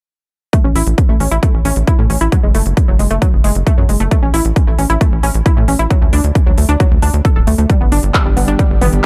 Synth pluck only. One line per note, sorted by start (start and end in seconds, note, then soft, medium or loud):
0.53 0.56 A3 loud
0.64 0.69 C#4 medium
0.76 0.82 E4 loud
1.09 1.13 A3 medium
1.20 1.25 C#4 medium
1.31 1.34 E4 loud
1.43 1.45 A3 loud
1.65 1.72 C#4 loud
1.87 1.94 E4 medium
1.99 2.05 A3 medium
2.10 2.14 C#4 medium
2.21 2.24 E4 loud
2.32 2.35 F#3 loud
2.43 2.48 G#3 medium
2.55 2.61 A3 loud
2.88 2.93 F#3 medium
2.99 3.04 G#3 medium
3.11 3.13 A3 loud
3.22 3.24 F#3 loud
3.44 3.51 G#3 loud
3.67 3.73 A3 loud
3.78 3.84 F#3 medium
3.89 3.93 G#3 medium
4.00 4.03 A3 medium
4.11 4.14 A3 loud
4.23 4.27 C#4 medium
4.34 4.40 E4 loud
4.67 4.72 A3 medium
4.79 4.83 C#4 medium
4.90 4.92 E4 loud
5.01 5.04 A3 loud
5.23 5.30 C#4 loud
5.46 5.52 E4 loud
5.57 5.63 A3 medium
5.68 5.72 C#4 medium
5.79 5.82 E4 loud
5.90 5.93 F#3 loud
6.02 6.06 A3 medium
6.13 6.19 D4 loud
6.46 6.51 F#3 medium
6.58 6.62 A3 medium
6.69 6.71 D4 loud
6.80 6.83 F#3 loud
7.02 7.07 D4 loud
7.25 7.27 A4 medium
7.36 7.40 A4 medium
7.47 7.50 A3 medium
7.58 7.63 A3 medium
7.70 7.72 G3 loud
7.81 7.85 B3 medium
7.92 7.99 D4 loud
8.26 8.30 G3 medium
8.37 8.41 B3 medium
8.48 8.51 D4 loud
8.59 8.62 G3 loud
8.82 8.88 B3 loud